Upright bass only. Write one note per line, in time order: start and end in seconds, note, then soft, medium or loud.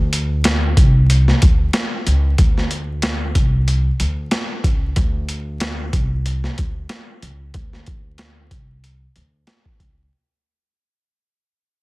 0.00 0.73 D2 loud
0.77 1.30 C2 medium
1.43 1.69 D2 medium
2.07 2.33 C#2 medium
2.39 3.31 D2 loud
3.35 3.88 C2 medium
4.00 4.26 D2 medium
4.64 4.91 C#2 medium
4.97 5.89 D2 loud
5.93 6.46 C2 medium
6.59 6.85 D2 medium
7.22 7.49 C#2 medium
7.55 8.47 D2 loud
8.51 9.04 C2 medium
9.16 9.42 D2 medium
9.80 10.06 C#2 medium